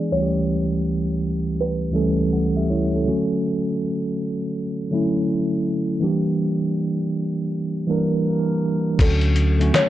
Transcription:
Already playing: E3 G#3 B3 D4 G#4 D5
0.11 C#2 E3 G3 A3 C#4 C#5
0.16 F#4
0.22 G4
1.61 B4
1.91 C#2 E3 G3 A3 C#4
1.95 A4
2.33 A4 F#5
2.57 G4 E5
2.70 E4 C#5
2.96 C#4 A4
3.04 D3 F#3 A3 C#4
3.08 F#4
4.90 D3 F#3 A3 C#4 E4
6.00 E3 G3 A#3 D4
6.04 G4
7.87 E3 G3 A#3 D4
7.91 A#4
8.99 D2 D3 F#3 A3 C#4 A4, kick, closed hi-hat, crash
9.04 F#4
9.21 closed hi-hat
9.36 closed hi-hat
9.58 D3 F#3 A3 C#4, closed hi-hat
9.62 F#4
9.74 C#5, snare, closed hi-hat

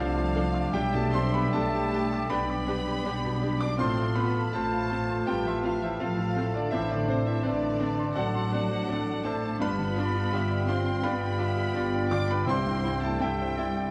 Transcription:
Already playing: C2 C3 F3 D4 E4 C5 D5 E5 F5 A5
0.00 A3 D4 F4 F5
0.16 F4
0.35 D4 A4 F5
0.54 D6
0.73 B1 G3 D4 G4 E5 G5
0.93 B2 A3 A4 A5
1.12 C4 D4 G4 C5 C6
1.16 D4
1.33 B3 G4 B4 B5
1.52 B1 A3 D4 G4 A4 D5 A5
1.75 G4
1.92 D4 G4 G5
2.13 D6
2.28 B1 G3 B3 D4 G4 B4 D5 G5 B5
2.50 D6
2.67 D4 G4 B4 D5
2.87 G4
3.04 B1 D4 G4
3.25 B2
3.41 D4 G4
3.60 B2 D4 D5 D6
3.78 A1 A2 A3 C4 F4 A4 C5 F5 A5 C6
3.99 A3
4.15 B3 C4 F4 B4 B5
4.36 A4
4.53 A1 A3 C4 F4 A4 C5 A5
4.72 F5
4.90 C4 F4 A5
5.10 C6
5.27 A1 G3 C4 F4 G4 B4 G5 A5
5.46 E3 E4 E5 C6
5.63 F3 C4 F4 F5
5.82 E3 E4 C5 E5
6.00 A1 F3 A3 C4 F4 A4 F5
6.18 F4
6.36 A3 C4 E4 F4
6.54 D3 D4 F4 D5
6.71 A1 A2 E3 A3 C4 D4 E4 C5 D5 E5
6.90 D3 A3 D4 D5
7.08 C3 C4 D4 C5
7.25 E3 E4 A4 E5
7.43 A1 D3 A3 C4 D4 B4 C5 D5
7.63 D5
7.79 C4 D4 A5
7.99 C6
8.14 A1 F#3 A3 C4 D4 F#4 A4 F#5 A5
8.34 C6
8.52 C4 D4 F#4 D5
8.71 C5
8.88 A1 C4 D4 A4 D5
9.06 D4
9.23 A3 C4 D4 A4 C5 A5
9.43 D4
9.60 G1 G2 G3 B3 D4 F4 B4 F5 B5
9.79 D3
9.97 D4 F4 D5
10.14 F4
10.32 G1 D4 F4 G4 E5 G5
10.48 D5
10.67 C4 D4 F4 C5 F5 C6
10.85 G5
11.03 G1 G3 B3 D4 F4 B4 D5 F5 B5
11.20 G5
11.38 D4 F4 D5 E5
11.57 G4
11.74 G1 D4 F4 D5
11.93 D4
12.10 D3 D4 F4 D5 D6
12.29 B3 D4 B4 B5
12.46 C2 C3 G3 C4 E4 C5 E5 C6
12.50 C5
12.66 G2
12.83 C4 E4
13.02 A3 E4 A4 A5
13.20 C2 G3 C4 E4 G4 E5 G5
13.41 C5
13.57 C4 E4 D5 E5
13.77 G5

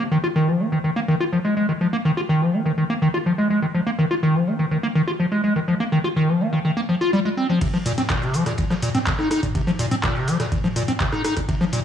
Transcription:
0.11 D#3
0.24 F4, closed hi-hat
0.36 D#3, closed hi-hat
0.48 F3
0.60 A#3, shaker
0.72 D#3, closed hi-hat
0.84 D#3, closed hi-hat
0.96 A#3
1.08 D#3
1.20 F4, closed hi-hat
1.32 F3
1.45 G#3
1.57 G#3, shaker
1.69 D#3, closed hi-hat
1.81 F3, closed hi-hat, shaker
1.93 A#3
2.05 D#3
2.17 F4, closed hi-hat
2.29 D#3, closed hi-hat
2.41 F3, shaker
2.53 A#3, shaker
2.66 D#3, closed hi-hat, shaker
2.78 D#3, closed hi-hat, shaker
2.90 A#3
3.02 D#3
3.14 F4, closed hi-hat
3.26 F3, closed hi-hat, shaker
3.38 G#3
3.50 G#3, shaker
3.62 D#3, closed hi-hat, shaker
3.74 F3, closed hi-hat, shaker
3.87 A#3
3.99 D#3, shaker
4.11 F4, closed hi-hat
4.23 D#3, closed hi-hat
4.35 F3, shaker
4.47 A#3, shaker
4.59 D#3, closed hi-hat
4.71 D#3, closed hi-hat, shaker
4.83 A#3
4.95 D#3, shaker
5.08 F4, closed hi-hat
5.20 F3, closed hi-hat, shaker
5.32 G#3
5.44 G#3, shaker
5.56 D#3, closed hi-hat, shaker
5.68 F3, closed hi-hat, shaker
5.80 A#3
5.92 D#3
6.04 F4, closed hi-hat
6.16 D#3, closed hi-hat
6.28 F3, shaker
6.41 A#3, shaker
6.53 D#3, closed hi-hat
6.65 D#3, closed hi-hat
6.77 A#3
6.89 F3, shaker
7.01 F4, closed hi-hat
7.13 G3, closed hi-hat
7.25 G#3
7.37 C4, shaker
7.49 F3, closed hi-hat
7.61 C3, kick, closed hi-hat, ride, crash, shaker
7.74 F3
7.85 A#2, open hi-hat, ride, shaker
7.97 C4, snare, closed hi-hat, mid tom, shaker
8.09 A#2, kick, cross-stick, snare, clap, closed hi-hat, ride, shaker
8.22 C3, ride, shaker
8.33 F3, open hi-hat, ride, shaker
8.46 A#2, cross-stick, closed hi-hat, ride, shaker
8.58 A#2, kick, closed hi-hat, ride, shaker
8.70 F3, cross-stick, snare, shaker
8.82 A#2, open hi-hat, ride, shaker
8.95 C4, snare, closed hi-hat, mid tom, shaker
9.07 C3, kick, snare, clap, closed hi-hat, ride, shaker
9.19 D#4, cross-stick
9.31 D#4, cross-stick, open hi-hat, ride, shaker
9.43 A#2, kick, closed hi-hat, mid tom, shaker
9.55 C3, kick, closed hi-hat, ride, shaker
9.67 F3, shaker
9.79 A#2, open hi-hat, ride, shaker
9.91 C4, closed hi-hat, mid tom, shaker
10.03 A#2, kick, cross-stick, snare, clap, closed hi-hat, ride, shaker
10.16 C3, shaker
10.27 F3, open hi-hat, ride, shaker
10.40 A#2, cross-stick, snare, closed hi-hat, shaker
10.52 A#2, kick, closed hi-hat, ride, shaker
10.64 F3, mid tom, shaker
10.76 A#2, open hi-hat, ride, shaker
10.88 C4, closed hi-hat, mid tom, shaker
10.99 C3, kick, snare, clap, closed hi-hat, ride, shaker
11.12 D#4, cross-stick, mid tom, ride, shaker
11.24 D#4, cross-stick, open hi-hat, ride, shaker
11.37 A#2, kick, cross-stick, closed hi-hat, ride, shaker
11.49 C3, kick, closed hi-hat, ride, shaker
11.61 F3
11.72 A#2, open hi-hat, ride, shaker

